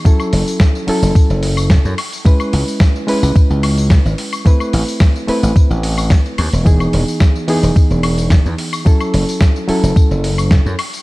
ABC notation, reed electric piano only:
X:1
M:4/4
L:1/8
Q:1/4=109
K:F#dor
V:1 name="Reed electric piano"
[F,CEA]3 [F,CEA]4 z | [G,CEB]3 [G,CEB]4- [G,CEB] | [A,=CEB]3 [A,CEB]4- [A,CEB] | [E,B,DG]3 [E,B,DG]4- [E,B,DG] |
[F,CEA]3 [F,CEA]4 z |]